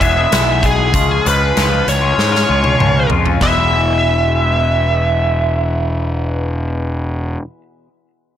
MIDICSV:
0, 0, Header, 1, 6, 480
1, 0, Start_track
1, 0, Tempo, 622407
1, 725, Time_signature, 4, 2, 24, 8
1, 6455, End_track
2, 0, Start_track
2, 0, Title_t, "Lead electric guitar"
2, 0, Program_c, 0, 29
2, 4, Note_on_c, 0, 76, 100
2, 498, Note_off_c, 0, 76, 0
2, 509, Note_on_c, 0, 68, 86
2, 986, Note_off_c, 0, 68, 0
2, 989, Note_on_c, 0, 71, 91
2, 1454, Note_on_c, 0, 73, 83
2, 1470, Note_off_c, 0, 71, 0
2, 2377, Note_off_c, 0, 73, 0
2, 2643, Note_on_c, 0, 76, 73
2, 5150, Note_off_c, 0, 76, 0
2, 6455, End_track
3, 0, Start_track
3, 0, Title_t, "Clean electric guitar"
3, 0, Program_c, 1, 27
3, 4, Note_on_c, 1, 52, 75
3, 8, Note_on_c, 1, 56, 72
3, 17, Note_on_c, 1, 59, 78
3, 20, Note_on_c, 1, 68, 74
3, 122, Note_off_c, 1, 68, 0
3, 125, Note_off_c, 1, 59, 0
3, 125, Note_on_c, 1, 68, 72
3, 134, Note_on_c, 1, 59, 60
3, 138, Note_off_c, 1, 52, 0
3, 138, Note_off_c, 1, 56, 0
3, 141, Note_on_c, 1, 56, 61
3, 147, Note_on_c, 1, 52, 54
3, 238, Note_on_c, 1, 40, 77
3, 240, Note_off_c, 1, 52, 0
3, 245, Note_on_c, 1, 47, 82
3, 246, Note_off_c, 1, 59, 0
3, 250, Note_on_c, 1, 52, 84
3, 251, Note_off_c, 1, 56, 0
3, 254, Note_off_c, 1, 68, 0
3, 254, Note_on_c, 1, 56, 81
3, 256, Note_on_c, 1, 59, 91
3, 257, Note_on_c, 1, 68, 87
3, 464, Note_off_c, 1, 52, 0
3, 474, Note_on_c, 1, 52, 65
3, 475, Note_off_c, 1, 56, 0
3, 477, Note_off_c, 1, 59, 0
3, 478, Note_on_c, 1, 56, 65
3, 486, Note_on_c, 1, 59, 72
3, 491, Note_off_c, 1, 68, 0
3, 494, Note_on_c, 1, 68, 78
3, 588, Note_off_c, 1, 68, 0
3, 591, Note_off_c, 1, 59, 0
3, 591, Note_on_c, 1, 68, 68
3, 600, Note_on_c, 1, 59, 71
3, 604, Note_off_c, 1, 52, 0
3, 605, Note_off_c, 1, 56, 0
3, 608, Note_on_c, 1, 56, 58
3, 613, Note_on_c, 1, 52, 59
3, 707, Note_off_c, 1, 40, 0
3, 708, Note_off_c, 1, 59, 0
3, 709, Note_off_c, 1, 47, 0
3, 712, Note_on_c, 1, 49, 88
3, 714, Note_off_c, 1, 52, 0
3, 719, Note_on_c, 1, 53, 81
3, 726, Note_off_c, 1, 56, 0
3, 729, Note_on_c, 1, 56, 89
3, 731, Note_on_c, 1, 61, 93
3, 732, Note_off_c, 1, 68, 0
3, 735, Note_on_c, 1, 65, 91
3, 941, Note_off_c, 1, 53, 0
3, 949, Note_off_c, 1, 56, 0
3, 951, Note_on_c, 1, 53, 67
3, 958, Note_off_c, 1, 61, 0
3, 959, Note_on_c, 1, 56, 72
3, 963, Note_off_c, 1, 65, 0
3, 967, Note_on_c, 1, 61, 71
3, 972, Note_on_c, 1, 65, 76
3, 1196, Note_off_c, 1, 49, 0
3, 1200, Note_off_c, 1, 53, 0
3, 1204, Note_off_c, 1, 56, 0
3, 1205, Note_on_c, 1, 49, 81
3, 1208, Note_off_c, 1, 61, 0
3, 1209, Note_on_c, 1, 53, 87
3, 1212, Note_off_c, 1, 65, 0
3, 1213, Note_on_c, 1, 56, 89
3, 1218, Note_on_c, 1, 61, 90
3, 1222, Note_on_c, 1, 65, 100
3, 1315, Note_off_c, 1, 65, 0
3, 1320, Note_off_c, 1, 61, 0
3, 1324, Note_on_c, 1, 65, 65
3, 1329, Note_on_c, 1, 61, 58
3, 1330, Note_off_c, 1, 56, 0
3, 1339, Note_on_c, 1, 56, 50
3, 1430, Note_off_c, 1, 56, 0
3, 1432, Note_off_c, 1, 53, 0
3, 1439, Note_off_c, 1, 61, 0
3, 1440, Note_off_c, 1, 65, 0
3, 1553, Note_on_c, 1, 65, 58
3, 1564, Note_off_c, 1, 49, 0
3, 1568, Note_on_c, 1, 61, 63
3, 1576, Note_on_c, 1, 56, 54
3, 1782, Note_off_c, 1, 65, 0
3, 1791, Note_on_c, 1, 65, 64
3, 1793, Note_off_c, 1, 61, 0
3, 1801, Note_off_c, 1, 56, 0
3, 1802, Note_on_c, 1, 61, 59
3, 1811, Note_on_c, 1, 56, 49
3, 1912, Note_off_c, 1, 56, 0
3, 1914, Note_on_c, 1, 53, 68
3, 1917, Note_off_c, 1, 61, 0
3, 1921, Note_on_c, 1, 56, 65
3, 1926, Note_off_c, 1, 65, 0
3, 1926, Note_on_c, 1, 61, 75
3, 1935, Note_on_c, 1, 65, 79
3, 2029, Note_off_c, 1, 65, 0
3, 2038, Note_on_c, 1, 65, 62
3, 2042, Note_off_c, 1, 61, 0
3, 2051, Note_on_c, 1, 61, 62
3, 2052, Note_off_c, 1, 56, 0
3, 2061, Note_on_c, 1, 56, 49
3, 2143, Note_off_c, 1, 53, 0
3, 2151, Note_on_c, 1, 49, 69
3, 2152, Note_off_c, 1, 56, 0
3, 2153, Note_off_c, 1, 61, 0
3, 2153, Note_on_c, 1, 53, 80
3, 2161, Note_off_c, 1, 65, 0
3, 2162, Note_on_c, 1, 56, 72
3, 2163, Note_on_c, 1, 61, 92
3, 2170, Note_on_c, 1, 65, 86
3, 2381, Note_off_c, 1, 53, 0
3, 2388, Note_off_c, 1, 56, 0
3, 2390, Note_on_c, 1, 53, 68
3, 2393, Note_off_c, 1, 61, 0
3, 2397, Note_on_c, 1, 56, 68
3, 2400, Note_off_c, 1, 65, 0
3, 2402, Note_on_c, 1, 61, 66
3, 2409, Note_on_c, 1, 65, 70
3, 2500, Note_off_c, 1, 65, 0
3, 2510, Note_on_c, 1, 65, 65
3, 2514, Note_off_c, 1, 61, 0
3, 2523, Note_on_c, 1, 61, 57
3, 2528, Note_off_c, 1, 56, 0
3, 2538, Note_on_c, 1, 56, 53
3, 2622, Note_off_c, 1, 53, 0
3, 2622, Note_off_c, 1, 65, 0
3, 2623, Note_off_c, 1, 49, 0
3, 2624, Note_on_c, 1, 40, 76
3, 2629, Note_off_c, 1, 61, 0
3, 2634, Note_on_c, 1, 47, 88
3, 2636, Note_off_c, 1, 56, 0
3, 2639, Note_on_c, 1, 52, 85
3, 2644, Note_on_c, 1, 56, 82
3, 2649, Note_on_c, 1, 59, 85
3, 2658, Note_on_c, 1, 64, 96
3, 5702, Note_off_c, 1, 40, 0
3, 5712, Note_off_c, 1, 47, 0
3, 5717, Note_off_c, 1, 52, 0
3, 5722, Note_off_c, 1, 56, 0
3, 5724, Note_off_c, 1, 59, 0
3, 5729, Note_off_c, 1, 64, 0
3, 6455, End_track
4, 0, Start_track
4, 0, Title_t, "Picked electric bass"
4, 0, Program_c, 2, 34
4, 4, Note_on_c, 2, 28, 87
4, 195, Note_off_c, 2, 28, 0
4, 250, Note_on_c, 2, 35, 76
4, 721, Note_off_c, 2, 35, 0
4, 721, Note_on_c, 2, 37, 95
4, 913, Note_off_c, 2, 37, 0
4, 974, Note_on_c, 2, 37, 82
4, 1160, Note_off_c, 2, 37, 0
4, 1213, Note_on_c, 2, 37, 83
4, 1399, Note_off_c, 2, 37, 0
4, 1441, Note_on_c, 2, 37, 80
4, 1632, Note_off_c, 2, 37, 0
4, 1682, Note_on_c, 2, 44, 78
4, 1873, Note_off_c, 2, 44, 0
4, 1926, Note_on_c, 2, 37, 79
4, 2115, Note_off_c, 2, 37, 0
4, 2162, Note_on_c, 2, 37, 69
4, 2353, Note_off_c, 2, 37, 0
4, 2402, Note_on_c, 2, 41, 76
4, 2593, Note_off_c, 2, 41, 0
4, 2629, Note_on_c, 2, 28, 89
4, 5677, Note_off_c, 2, 28, 0
4, 6455, End_track
5, 0, Start_track
5, 0, Title_t, "Muted clean electric guitar strokes"
5, 1439, Note_on_c, 9, 29, 41
5, 1516, Note_off_c, 9, 29, 0
5, 6455, End_track
6, 0, Start_track
6, 0, Title_t, "Drums"
6, 8, Note_on_c, 9, 36, 69
6, 11, Note_on_c, 9, 42, 51
6, 85, Note_off_c, 9, 36, 0
6, 88, Note_off_c, 9, 42, 0
6, 247, Note_on_c, 9, 42, 77
6, 253, Note_on_c, 9, 38, 112
6, 324, Note_off_c, 9, 42, 0
6, 330, Note_off_c, 9, 38, 0
6, 485, Note_on_c, 9, 36, 79
6, 491, Note_on_c, 9, 42, 54
6, 562, Note_off_c, 9, 36, 0
6, 569, Note_off_c, 9, 42, 0
6, 722, Note_on_c, 9, 42, 76
6, 724, Note_on_c, 9, 36, 101
6, 799, Note_off_c, 9, 42, 0
6, 801, Note_off_c, 9, 36, 0
6, 973, Note_on_c, 9, 42, 56
6, 1050, Note_off_c, 9, 42, 0
6, 1208, Note_on_c, 9, 42, 73
6, 1213, Note_on_c, 9, 38, 98
6, 1285, Note_off_c, 9, 42, 0
6, 1291, Note_off_c, 9, 38, 0
6, 1448, Note_on_c, 9, 42, 53
6, 1525, Note_off_c, 9, 42, 0
6, 1689, Note_on_c, 9, 38, 52
6, 1767, Note_off_c, 9, 38, 0
6, 1813, Note_on_c, 9, 38, 47
6, 1891, Note_off_c, 9, 38, 0
6, 2035, Note_on_c, 9, 48, 56
6, 2112, Note_off_c, 9, 48, 0
6, 2162, Note_on_c, 9, 47, 72
6, 2239, Note_off_c, 9, 47, 0
6, 2388, Note_on_c, 9, 43, 74
6, 2466, Note_off_c, 9, 43, 0
6, 2510, Note_on_c, 9, 43, 74
6, 2587, Note_off_c, 9, 43, 0
6, 2631, Note_on_c, 9, 38, 86
6, 2632, Note_on_c, 9, 36, 81
6, 2708, Note_off_c, 9, 38, 0
6, 2709, Note_off_c, 9, 36, 0
6, 6455, End_track
0, 0, End_of_file